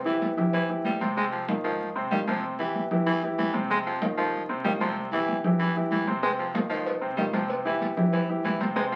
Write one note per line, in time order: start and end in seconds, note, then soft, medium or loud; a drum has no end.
0.00 0.32 C2 loud
0.05 0.31 E3 medium
0.05 0.31 E4 medium
0.05 0.32 G4 medium
0.05 high conga soft
0.22 cowbell medium
0.22 high conga medium
0.37 0.67 C2 loud
0.37 0.63 E3 medium
0.37 0.63 E4 medium
0.37 0.63 G4 medium
0.37 high conga soft
0.37 low conga medium
0.53 0.70 E3 medium
0.53 cowbell loud
0.53 high conga soft
0.69 0.84 E2 medium
0.69 0.95 E3 medium
0.69 0.95 E4 medium
0.69 0.95 G4 medium
0.69 high conga soft
0.84 1.58 F2 loud
0.84 1.02 G3 medium
0.84 cowbell medium
0.84 high conga medium
1.01 1.14 C3 medium
1.01 1.14 C4 loud
1.01 1.14 C5 medium
1.01 cowbell medium
1.01 high conga medium
1.17 1.43 C3 medium
1.17 1.25 G#3 medium
1.17 1.43 C4 medium
1.17 1.43 C5 medium
1.17 high conga soft
1.32 1.49 F3 medium
1.32 high conga soft
1.48 1.61 D#3 medium
1.48 1.61 D#4 medium
1.48 1.62 F4 medium
1.48 high conga loud
1.64 2.08 G#2 loud
1.64 1.90 D#3 medium
1.64 1.89 F3 medium
1.64 1.90 D#4 medium
1.64 1.90 F4 medium
1.80 high conga soft
1.95 2.09 C3 medium
1.95 2.09 C4 medium
1.95 2.09 C5 medium
1.95 high conga soft
2.11 2.85 C2 loud
2.11 2.25 D#3 medium
2.11 2.20 G3 medium
2.11 2.25 D#4 medium
2.11 2.25 F4 medium
2.11 high conga medium
2.27 2.54 C3 loud
2.27 2.44 F3 medium
2.27 2.54 C4 medium
2.27 2.54 C5 medium
2.27 high conga medium
2.43 high conga soft
2.59 2.84 E3 medium
2.59 2.85 E3 medium
2.59 2.85 E4 medium
2.59 2.86 G4 medium
2.59 high conga soft
2.75 high conga medium
2.91 3.35 G2 medium
2.91 3.17 E3 medium
2.91 3.17 E4 medium
2.91 3.17 G4 medium
2.91 high conga soft
2.91 low conga medium
3.06 3.23 E3 loud
3.06 high conga soft
3.23 3.49 E3 medium
3.23 3.49 E4 medium
3.23 3.49 G4 medium
3.23 high conga soft
3.38 4.12 F2 loud
3.38 3.55 E3 medium
3.38 high conga medium
3.53 3.67 C3 loud
3.53 3.67 C4 loud
3.53 3.67 C5 medium
3.53 high conga medium
3.70 3.96 C3 medium
3.70 3.79 G#3 medium
3.70 3.96 C4 medium
3.70 3.96 C5 medium
3.70 high conga soft
3.86 4.03 F3 medium
3.86 high conga soft
4.02 4.15 D#3 medium
4.02 4.15 D#4 medium
4.02 4.15 F4 medium
4.02 high conga loud
4.17 4.62 C2 loud
4.17 4.44 D#3 medium
4.17 4.43 F3 medium
4.17 4.44 D#4 medium
4.17 4.44 F4 medium
4.34 high conga soft
4.49 4.62 C3 medium
4.49 4.62 C4 medium
4.49 4.63 C5 medium
4.49 high conga soft
4.65 5.38 C2 loud
4.65 4.78 D#3 medium
4.65 4.73 G3 medium
4.65 4.78 D#4 medium
4.65 4.79 F4 medium
4.65 high conga medium
4.81 5.07 C3 loud
4.81 4.97 F3 medium
4.81 5.07 C4 medium
4.81 5.07 C5 loud
4.81 high conga medium
4.96 high conga soft
5.12 5.37 E3 medium
5.12 5.39 E3 medium
5.12 5.39 E4 medium
5.12 5.39 G4 medium
5.12 high conga soft
5.28 high conga medium
5.44 5.73 G2 medium
5.44 5.70 E3 medium
5.44 5.70 E4 medium
5.44 5.71 G4 medium
5.44 high conga soft
5.44 low conga medium
5.59 5.76 E3 medium
5.59 high conga soft
5.59 low conga medium
5.75 5.90 G2 medium
5.75 6.02 E3 medium
5.75 6.02 E4 medium
5.75 6.02 G4 medium
5.75 high conga soft
5.90 6.65 F2 loud
5.90 6.08 E3 medium
5.90 high conga medium
6.07 6.20 C3 medium
6.07 6.21 C4 medium
6.07 6.21 C5 loud
6.07 high conga medium
6.23 6.49 C3 medium
6.23 6.31 G#3 medium
6.23 6.49 C4 medium
6.23 6.49 C5 medium
6.23 cowbell loud
6.23 high conga soft
6.39 6.55 F3 medium
6.39 high conga soft
6.54 6.67 D#3 medium
6.54 6.67 D#4 medium
6.54 6.68 F4 medium
6.54 cowbell medium
6.54 high conga loud
6.69 7.14 C2 loud
6.69 6.96 D#3 medium
6.69 6.95 F3 medium
6.69 6.96 D#4 medium
6.69 6.96 F4 medium
6.69 cowbell medium
6.86 cowbell loud
6.86 high conga soft
7.01 7.15 C3 medium
7.01 7.15 C4 medium
7.01 7.15 C5 medium
7.01 high conga soft
7.17 7.91 C2 loud
7.17 7.31 D#3 medium
7.17 7.26 G3 medium
7.17 7.31 D#4 medium
7.17 7.31 F4 medium
7.17 cowbell medium
7.17 high conga medium
7.33 7.60 C3 medium
7.33 7.50 F3 medium
7.33 7.60 C4 medium
7.33 7.60 C5 medium
7.33 cowbell medium
7.33 high conga medium
7.50 cowbell loud
7.50 high conga soft
7.65 7.91 E3 medium
7.65 7.91 E4 medium
7.65 7.91 G4 medium
7.65 high conga soft
7.81 cowbell medium
7.81 high conga medium
7.97 8.41 G2 medium
7.97 8.23 E3 medium
7.97 8.23 E4 medium
7.97 8.23 G4 medium
7.97 high conga soft
7.97 low conga medium
8.13 8.29 E3 medium
8.13 cowbell loud
8.13 high conga soft
8.29 8.55 E3 medium
8.29 8.55 E4 medium
8.29 8.55 G4 medium
8.29 high conga soft
8.44 8.96 F2 loud
8.44 8.61 E3 medium
8.44 cowbell medium
8.44 high conga medium
8.61 8.73 C3 medium
8.61 8.74 C4 medium
8.61 8.74 C5 medium
8.61 cowbell medium
8.61 high conga medium
8.76 8.96 C3 loud
8.76 8.84 G#3 medium
8.76 8.96 C4 loud
8.76 8.96 C5 medium
8.76 cowbell loud
8.76 high conga soft
8.92 8.96 F3 medium
8.92 high conga soft